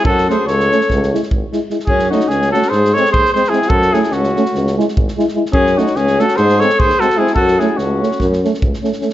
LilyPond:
<<
  \new Staff \with { instrumentName = "Trumpet" } { \time 9/8 \tempo 4. = 98 a'8 bis'8 cis''4. r2 | gis'8 fis'8 gis'8 a'8 bis'8 cis''8 bis'8 bis'8 gis'8 | a'8 gis'8 fis'4. r2 | gis'8 fis'8 gis'8 a'8 bis'8 cis''8 bis'8 a'8 gis'8 |
a'8 gis'8 fis'4 r2 r8 | }
  \new Staff \with { instrumentName = "Alto saxophone" } { \time 9/8 fis'8 gis'8 a'4. r2 | cis'8 dis'8 cis'8 fis'8 gis'8 a'8 gis'8 gis'8 e'8 | fis'8 e'8 cis'4. r2 | cis'8 dis'8 cis'8 fis'8 gis'8 a'8 gis'8 fis'8 e'8 |
fis'8 e'8 cis'4 r2 r8 | }
  \new Staff \with { instrumentName = "Euphonium" } { \time 9/8 r8 cis'8 r8 cis'8 r8 e'8 r8 e'8 e'8 | r8 cis'8 r8 cis'8 r8 bis8 r8 bis8 bis8 | r8 cis'8 r8 cis'8 r8 e'8 r8 e'8 e'8 | r8 cis'8 r8 cis'8 r8 bis8 r8 bis8 bis8 |
r8 cis'8 r8 cis'8 r8 cis'8 r8 cis'8 cis'8 | }
  \new Staff \with { instrumentName = "Euphonium" } { \time 9/8 r8 a8 r8 a8 r8 gis8 r8 gis8 gis8 | r8 a8 r8 a8 r8 gis8 r8 gis8 gis8 | r8 a8 r8 a8 r8 gis8 r8 gis8 gis8 | r8 a8 r8 a8 r8 gis8 r8 gis8 gis8 |
r8 a8 r8 a8 r8 a8 r8 a8 a8 | }
  \new Staff \with { instrumentName = "Tuba" } { \clef bass \time 9/8 fis,4 cis,4 cis,4 gis,,8 r4 | fis,4 cis,4 gis,4 dis,8 r4 | fis,4 cis,4 cis,4 gis,,8 r4 | fis,4 cis,4 gis,4 dis,8 r4 |
fis,4 cis,4 fis,4 cis,8 r4 | }
  \new DrumStaff \with { instrumentName = "Drums" } \drummode { \time 9/8 bd16 sn16 sn8 sn16 sn16 sn16 sn16 <bd sn>16 sn16 sn16 sn16 bd8 sn8 sn16 sn16 | bd16 sn16 sn16 sn16 sn16 sn16 sn16 sn16 sn16 sn16 sn16 sn16 bd16 sn16 sn16 sn16 sn16 sn16 | bd16 sn16 sn16 sn16 sn16 sn16 sn16 sn16 sn16 sn16 sn16 sn16 bd16 sn16 sn16 sn8 sn16 | bd16 sn16 sn16 sn16 sn16 sn16 sn16 sn16 sn16 sn16 sn16 sn16 bd16 sn16 sn16 sn8 sn16 |
bd16 sn16 sn8 sn8 sn16 sn16 <bd sn>16 sn16 sn16 sn16 bd16 sn16 sn16 sn16 sn16 sn16 | }
>>